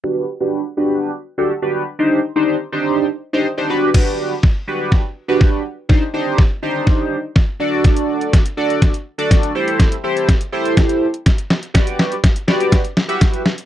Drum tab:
CC |----------------|----------------|x---------------|----------------|
HH |----------------|----------------|----------------|----------------|
SD |----------------|----------------|o---o---o---o---|o---o---o---o---|
BD |----------------|----------------|o---o---o---o---|o---o---o---o---|

CC |----------------|----------------|----------------|
HH |xx-xxx-xxx-xxx-x|xx-xxx-xxx-xxx-x|xx-xxx-xxx-xxx-x|
SD |o---o---o---o---|o---o---o---o-o-|o-o-o-o-o-o-o-o-|
BD |o---o---o---o---|o---o---o---o---|o---o---o---o---|